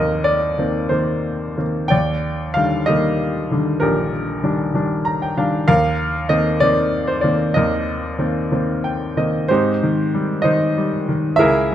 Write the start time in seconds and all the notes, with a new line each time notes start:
Already playing: D#2 D#3 A#3 C4 G4 A#4 C5 D#5
0.24 D5
0.58 D#3 A#3 C4
0.89 D#3 A#3 C4 C5
1.57 D#3 A#3 C4
1.88 D#2 D5 G5
2.54 D3 D#3 G3 F5
2.86 D#3 G3 A#3 G4 D#5
3.51 D3 D#3 G3
3.80 A#1 G4 A#4
4.43 D#3 G3 D4
4.74 D#3 G3 D4
5.05 A#5
5.22 G5
5.37 D#3 G3 D4 F5
5.67 D#2 A#4 F5
6.29 D#3 A#3 C4 D#5
6.60 D#3 A#3 C4 D5
7.07 C5
7.21 D#3 A#3 C4 D5
7.54 D#2 A#4 D#5
8.19 D#3 A#3 C4
8.52 D#3 A#3 C4
8.84 G5
9.17 D#3 A#3 C4 D#5
9.48 G#2 C4 D#4 G4 C5
9.83 D#3
10.14 G3
10.42 D#3 D#4 C5 D#5
10.78 G3
11.09 D#3
11.36 E4 G#4 A#4 E5
11.40 C#2
11.71 G#2